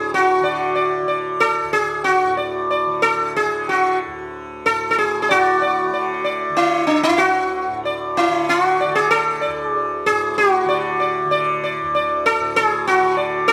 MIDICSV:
0, 0, Header, 1, 3, 480
1, 0, Start_track
1, 0, Tempo, 645856
1, 73, Time_signature, 4, 2, 24, 8
1, 5352, Tempo, 628272
1, 10186, End_track
2, 0, Start_track
2, 0, Title_t, "Sitar"
2, 0, Program_c, 0, 104
2, 105, Note_on_c, 0, 66, 77
2, 323, Note_on_c, 0, 74, 38
2, 545, Note_off_c, 0, 74, 0
2, 561, Note_on_c, 0, 74, 34
2, 785, Note_off_c, 0, 74, 0
2, 786, Note_off_c, 0, 66, 0
2, 802, Note_on_c, 0, 74, 35
2, 1026, Note_off_c, 0, 74, 0
2, 1043, Note_on_c, 0, 69, 85
2, 1267, Note_off_c, 0, 69, 0
2, 1284, Note_on_c, 0, 68, 82
2, 1515, Note_off_c, 0, 68, 0
2, 1518, Note_on_c, 0, 66, 69
2, 1745, Note_off_c, 0, 66, 0
2, 1763, Note_on_c, 0, 74, 32
2, 1988, Note_off_c, 0, 74, 0
2, 2011, Note_on_c, 0, 74, 36
2, 2233, Note_off_c, 0, 74, 0
2, 2246, Note_on_c, 0, 69, 88
2, 2470, Note_off_c, 0, 69, 0
2, 2501, Note_on_c, 0, 68, 77
2, 2740, Note_off_c, 0, 68, 0
2, 2743, Note_on_c, 0, 66, 64
2, 2959, Note_off_c, 0, 66, 0
2, 3462, Note_on_c, 0, 69, 85
2, 3638, Note_off_c, 0, 69, 0
2, 3647, Note_on_c, 0, 69, 62
2, 3692, Note_off_c, 0, 69, 0
2, 3705, Note_on_c, 0, 68, 76
2, 3872, Note_off_c, 0, 68, 0
2, 3881, Note_on_c, 0, 68, 57
2, 3928, Note_off_c, 0, 68, 0
2, 3932, Note_on_c, 0, 74, 36
2, 3945, Note_on_c, 0, 66, 80
2, 4150, Note_off_c, 0, 74, 0
2, 4176, Note_on_c, 0, 74, 39
2, 4391, Note_off_c, 0, 74, 0
2, 4412, Note_on_c, 0, 74, 34
2, 4620, Note_off_c, 0, 66, 0
2, 4628, Note_off_c, 0, 74, 0
2, 4640, Note_on_c, 0, 74, 37
2, 4861, Note_off_c, 0, 74, 0
2, 4880, Note_on_c, 0, 64, 80
2, 5101, Note_off_c, 0, 64, 0
2, 5104, Note_on_c, 0, 62, 67
2, 5225, Note_off_c, 0, 62, 0
2, 5228, Note_on_c, 0, 64, 81
2, 5336, Note_on_c, 0, 66, 91
2, 5352, Note_off_c, 0, 64, 0
2, 5799, Note_off_c, 0, 66, 0
2, 5850, Note_on_c, 0, 74, 35
2, 6070, Note_off_c, 0, 74, 0
2, 6093, Note_on_c, 0, 64, 82
2, 6336, Note_off_c, 0, 64, 0
2, 6338, Note_on_c, 0, 65, 87
2, 6452, Note_off_c, 0, 65, 0
2, 6452, Note_on_c, 0, 66, 87
2, 6578, Note_on_c, 0, 74, 37
2, 6688, Note_off_c, 0, 66, 0
2, 6691, Note_on_c, 0, 68, 83
2, 6796, Note_off_c, 0, 74, 0
2, 6804, Note_off_c, 0, 68, 0
2, 6808, Note_on_c, 0, 69, 102
2, 7041, Note_on_c, 0, 74, 35
2, 7228, Note_off_c, 0, 69, 0
2, 7228, Note_on_c, 0, 68, 102
2, 7268, Note_off_c, 0, 74, 0
2, 7535, Note_off_c, 0, 68, 0
2, 7538, Note_on_c, 0, 68, 84
2, 7757, Note_off_c, 0, 68, 0
2, 7780, Note_on_c, 0, 66, 88
2, 8014, Note_on_c, 0, 74, 41
2, 8234, Note_off_c, 0, 74, 0
2, 8252, Note_on_c, 0, 74, 39
2, 8462, Note_off_c, 0, 66, 0
2, 8473, Note_off_c, 0, 74, 0
2, 8492, Note_on_c, 0, 74, 42
2, 8712, Note_off_c, 0, 74, 0
2, 8741, Note_on_c, 0, 74, 37
2, 8955, Note_off_c, 0, 74, 0
2, 8978, Note_on_c, 0, 74, 36
2, 9193, Note_off_c, 0, 74, 0
2, 9216, Note_on_c, 0, 69, 101
2, 9445, Note_off_c, 0, 69, 0
2, 9448, Note_on_c, 0, 68, 96
2, 9684, Note_off_c, 0, 68, 0
2, 9687, Note_on_c, 0, 66, 81
2, 9903, Note_off_c, 0, 66, 0
2, 9911, Note_on_c, 0, 74, 39
2, 10133, Note_off_c, 0, 74, 0
2, 10148, Note_on_c, 0, 69, 94
2, 10186, Note_off_c, 0, 69, 0
2, 10186, End_track
3, 0, Start_track
3, 0, Title_t, "Tanpura"
3, 0, Program_c, 1, 104
3, 0, Note_on_c, 1, 38, 55
3, 0, Note_on_c, 1, 45, 56
3, 0, Note_on_c, 1, 50, 56
3, 299, Note_off_c, 1, 50, 0
3, 299, Note_on_c, 1, 50, 56
3, 756, Note_off_c, 1, 50, 0
3, 756, Note_on_c, 1, 50, 57
3, 1207, Note_off_c, 1, 38, 0
3, 1210, Note_on_c, 1, 38, 53
3, 1669, Note_off_c, 1, 45, 0
3, 1672, Note_on_c, 1, 45, 54
3, 2124, Note_off_c, 1, 50, 0
3, 2124, Note_on_c, 1, 50, 53
3, 2580, Note_off_c, 1, 50, 0
3, 2580, Note_on_c, 1, 50, 56
3, 3019, Note_off_c, 1, 38, 0
3, 3022, Note_on_c, 1, 38, 56
3, 3464, Note_off_c, 1, 45, 0
3, 3467, Note_on_c, 1, 45, 53
3, 3934, Note_off_c, 1, 45, 0
3, 3934, Note_on_c, 1, 45, 60
3, 4381, Note_off_c, 1, 50, 0
3, 4381, Note_on_c, 1, 50, 58
3, 4827, Note_off_c, 1, 50, 0
3, 4827, Note_on_c, 1, 50, 53
3, 5267, Note_off_c, 1, 38, 0
3, 5270, Note_on_c, 1, 38, 54
3, 5720, Note_off_c, 1, 45, 0
3, 5720, Note_on_c, 1, 45, 58
3, 6178, Note_off_c, 1, 50, 0
3, 6178, Note_on_c, 1, 50, 55
3, 6631, Note_off_c, 1, 50, 0
3, 6631, Note_on_c, 1, 50, 62
3, 7084, Note_off_c, 1, 38, 0
3, 7087, Note_on_c, 1, 38, 58
3, 7539, Note_off_c, 1, 45, 0
3, 7542, Note_on_c, 1, 45, 57
3, 7981, Note_off_c, 1, 50, 0
3, 7981, Note_on_c, 1, 50, 60
3, 8441, Note_off_c, 1, 50, 0
3, 8441, Note_on_c, 1, 50, 59
3, 8882, Note_off_c, 1, 38, 0
3, 8885, Note_on_c, 1, 38, 63
3, 9319, Note_off_c, 1, 45, 0
3, 9322, Note_on_c, 1, 45, 58
3, 9785, Note_off_c, 1, 50, 0
3, 9785, Note_on_c, 1, 50, 58
3, 10186, Note_off_c, 1, 38, 0
3, 10186, Note_off_c, 1, 45, 0
3, 10186, Note_off_c, 1, 50, 0
3, 10186, End_track
0, 0, End_of_file